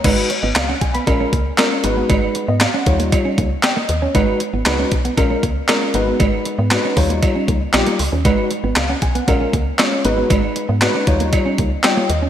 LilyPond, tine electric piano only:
\new Staff \with { instrumentName = "Tine electric piano" } { \time 4/4 \key gis \dorian \tempo 4 = 117 << { cis''16 r16 cis''16 dis''16 eis''16 fis''16 gis''16 b''8 r4. r16 | r8. dis''16 eis''16 fis''8 r4 r16 g''16 dis''8 cis''16~ | cis''16 r2. r8. | r1 |
r4 eis''16 fis''16 gis''16 fis''8 r4. r16 | r2. g''8 dis''8 | } \\ { <gis dis' fis' b'>8 r4. <gis cis' eis' ais'>8 r8 <gis cis' eis' ais'>8 <gis dis' fis' b'>8~ | <gis dis' fis' b'>8 r4 <g dis' eis' cis''>4 r4. | <gis dis' fis' b'>8 r8 <gis dis' fis' b'>8 r8 <gis cis' eis' ais'>8 r8 <gis cis' eis' ais'>8 <gis dis' fis' b'>8~ | <gis dis' fis' b'>8 r8 <gis dis' fis' b'>8 <g dis' eis' cis''>4 r8 <g dis' eis' g'>8 r8 |
<gis dis' fis' b'>8 r4. <gis cis' eis' ais'>8 r8 <gis cis' eis' cis''>8 <gis dis' fis' b'>8~ | <gis dis' fis' b'>8 r8 <gis dis' fis' b'>8 <g dis' eis' cis''>4 r8 <g dis' eis' cis''>8 r8 | } >> }